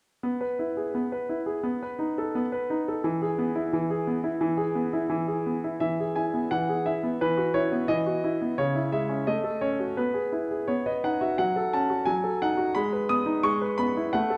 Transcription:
grand piano
0.23 B3
0.41 B4
0.59 E4
0.77 G#4
0.95 B3
1.12 B4
1.29 E4
1.46 G#4
1.63 B3
1.83 B4
1.99 D#4
2.18 A4
2.35 B3
2.52 B4
2.70 D#4
2.88 A4
3.04 E3
3.22 G#4
3.38 B3
3.55 E4
3.73 E3
3.90 G#4
4.07 B3
4.24 E4
4.41 E3
4.57 G#4
4.75 B3
4.93 E4
5.10 E3
5.28 G#4
5.46 B3
5.64 E4
5.80 E3 E5
6.00 G#4
6.16 E4 G#5
6.34 B3
6.51 E3 F#5
6.69 G#4
6.86 E4 E5
7.03 B3
7.21 E3 B4
7.37 F#4
7.54 E4 C#5
7.72 B3
7.88 E3 D#5
8.07 F#4
8.24 E4
8.42 B3
8.58 C#3 C#5
8.75 E4
8.92 G#3 E5
9.09 C#4
9.27 A3 D#5
9.44 A4
9.61 C#4 C#5
9.79 F#4
9.97 B3 B4
10.14 G#4
10.32 E4
10.51 G#4
10.68 B3 C#5
10.86 B4 D#5
11.04 D#4 F#5
11.21 F#4 E5
11.38 F#3 F#5
11.56 A4
11.73 C#4 A5
11.90 F#4
12.05 F#3 G#5
12.24 A4
12.42 D#4 F#5
12.57 F#4
12.75 G#3 B5
12.93 B4
13.09 B3 D#6
13.26 D#4
13.43 G#3 C#6
13.61 B4
13.78 B3 B5
13.97 E4
14.13 A3 F#5
14.30 A4

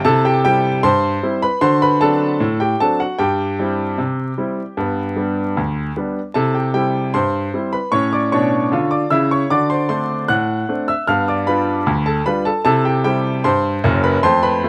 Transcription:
grand piano
0.05 C3 E4 A4 A5
0.25 G4 G5
0.45 G3 C4 E4 G4 G5
0.83 G2 C5 C6
1.23 G3 C4 E4
1.42 B4 B5
1.61 D3 F#4 C5 C6
1.82 B4 B5
2.01 F#3 C4 D4 A4 A5
2.40 A2
2.60 G4 G5
2.80 F#3 C4 D4 A4 A5
3.00 F#4 F#5
3.18 G2 G4 G5
3.59 G3 C4 E4
3.98 C3
4.38 G3 C4 E4
4.77 G2 B3
5.16 G3 B3 D4
5.57 D2
5.97 G3 B3 D4
6.34 C3 E4 A4 A5
6.54 G4 G5
6.74 G3 C4 E4 G4 G5
7.14 G2 C5 C6
7.54 G3 C4 E4
7.73 B4 B5
7.92 A2 C#4 C#5 C#6
8.13 D5 D6
8.32 B2 D4 C#5 C#6
8.72 D3 F4
8.91 D5 D6
9.10 C#3 E4 E5 E6
9.31 C#5 C#6
9.50 D3 F#4 D5 D6
9.70 C5 C6
9.89 A3 C4 D4 C5 C6
10.28 A2 F#5 F#6
10.69 A3 C4 D4
10.88 E5 E6
11.07 G2 B3 F5 F6
11.28 D5 D6
11.47 G3 D4 F4 B4 B5
11.86 D2
12.06 A4 A5
12.26 G3 D4 F4 B4 B5
12.45 A4 A5
12.65 C3 E4 A4 A5
12.85 G4 G5
13.04 G3 C4 E4 G4 G5
13.44 G2 C5 C6
13.84 F#1 F#2
14.04 B4 B5
14.23 F2 A3 C5 C6
14.43 B4 B5
14.63 F3 A3 F4

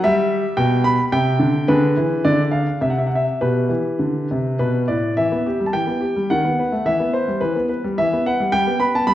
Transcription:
grand piano
0.04 G3 G4 E5
0.57 B2 G5
0.84 B5
1.12 C3 G5
1.39 D3
1.68 D3 G#4 B4
1.97 E3
2.24 D3 D5
2.51 F5
2.81 C3 E5
2.90 F#5
2.98 E5
3.06 F#5
3.15 E5
3.41 B2 G4 B4
3.69 E3
3.99 D3
4.31 C3
4.59 B2 B4
4.88 A2 D5
5.17 E3 E5
5.32 B3
5.46 G4
5.60 G3
5.66 A5
5.73 E3 G5
5.87 B3
6.01 G4
6.16 G3
6.30 D#3 F#5
6.45 B3
6.59 B4
6.72 A3
6.86 E3 E5
7.00 B3
7.13 B4 C5
7.28 G3
7.41 E3 B4
7.56 B3
7.69 B4
7.84 G3
7.98 E3 E5
8.13 B3
8.26 B4 F#5
8.40 G3
8.52 G3 G5
8.67 B3
8.80 B4 B5
8.95 B3 A5
9.07 G3 B5

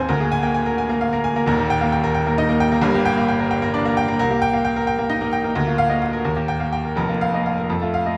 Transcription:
grand piano
Already playing: D#1 D#2 C4 G#4 C5 F5 G5 G#5
0.09 D2 A#4
0.20 A#3 G#4
0.32 G#5
0.43 A#3 G5
0.54 G#5
0.66 A#4
0.78 G#5
0.89 A#3 A#4
1.01 F5
1.13 A#3 A#4
1.24 G#5
1.36 A#3 A#4
1.46 D#1 D#2 A#4
1.59 A#3 G4
1.70 G5
1.81 A#3 F5
1.92 G5
2.04 A#4
2.15 G5
2.26 A#3 A#4
2.38 D#4 D#5
2.49 A#3 A#4
2.60 G5
2.72 A#3 A#4
2.82 G1 G2 A#4
2.94 A#3 G4
3.05 G5
3.17 A#3 F5
3.28 G5
3.40 A#4
3.51 G5
3.62 A#3 A#4
3.74 D4 D5
3.85 A#3 A#4
3.97 G5
4.08 A#3 A#4
4.19 C2 A#4
4.31 A#3 G4
4.42 G5
4.53 A#3 F5
4.65 G5
4.76 A#4
4.87 G5
4.98 A#3 A#4
5.10 D#4 D#5
5.21 A#3 A#4
5.33 G5
5.44 A#3 A#4
5.55 D2 A#4
5.67 A#3 F4
5.78 F5
5.90 A#3 D#5
6.02 F5
6.13 A#4
6.25 D#2 A#4
6.36 A#3 G4
6.48 G5
6.60 A#3 F5
6.72 G5
6.85 A#4
6.96 F1 F2 A#4
7.09 A#3 F4
7.21 F5
7.34 A#3 D#5
7.46 F5
7.58 A#4
7.70 F2 A4
7.82 A3 F4
7.94 F5
8.06 A3 D#5

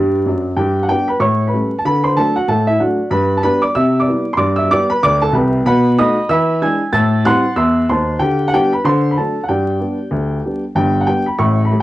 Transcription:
upright piano
Already playing: G2 G3 D4 B4 D5
0.26 F#2 F#3
0.57 G2 G4 G5
0.83 F#5
0.89 G3 B3 D4 G4 G5
1.08 B4 B5
1.20 A2 C#5 C#6
1.47 B4 B5
1.53 G3 A3 C#4
1.78 A5
1.85 D3 B4 B5
2.04 C5 C6
2.16 F#3 A3 D4 A4 A5
2.36 F#4 F#5
2.48 A2 A4 A5
2.67 E4 E5
2.79 F#3 A3 D4 F#4 D5 F#5
3.10 G2 B4 B5
3.37 A5
3.43 G3 B3 D4 B4 B5
3.62 D5 D6
3.75 C3 E5 E6
4.00 D5 D6
4.07 G3 B3 E4
4.33 G2 C6
4.37 D5 D6
4.56 E5 E6
4.71 G3 B3 G4 D5 D6
4.90 B4 B5
5.03 D2 D5 D6
5.22 A4 A5
5.32 C2 C3 B4 G5 B5
5.65 B2 B4 F#5 B5
5.98 A3 D#4 F#4 D#5 B5 D#6
6.29 E3 E5 B5 E6
6.61 G#3 D4 E4 G#5 E6 G#6
6.92 A2 A5 E6 A6
7.24 G3 C4 E4 F#5 C6 F#6
7.56 E2 E5 C6 E6
7.89 D#2 D#3 C5 A5 C6
8.19 D3 G4 G5
8.48 F#5
8.53 G3 B3 D4 G4 G5
8.73 B4 B5
8.84 D3 C5 C6
9.11 B5
9.17 F#3 A3 D4 A4 A5
9.44 F#5
9.49 G2 G4 D5 G5
9.80 G3 B3 D4
10.11 D2
10.45 G3 B3 D4
10.75 G1 G2 G5
11.01 F#5
11.07 G3 B3 D4 G5
11.26 B5
11.39 A1 A2 C#6
11.65 B5
11.71 G3 A3 A4

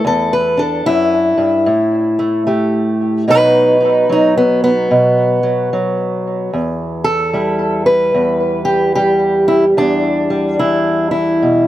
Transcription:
steel-string acoustic guitar
0.05 E2 A4
0.33 B4
0.57 D4 A4
0.86 F#2 E4
1.38 G2
1.66 A2
2.19 A3
2.47 A3 G4
3.28 B2 F#3 B3 D#4 B4
3.80 D#4
4.09 F#3 D#4
4.38 B3
4.64 B3
4.91 B2
5.43 F#3
5.73 F#3
6.53 E2
7.04 A4
7.33 G3 E4
7.86 B4
8.14 E2
8.65 G4
8.95 G3 G4
9.48 E4
9.77 E2 D4
10.30 G3
10.59 E3 E4
11.11 E4
11.42 B2

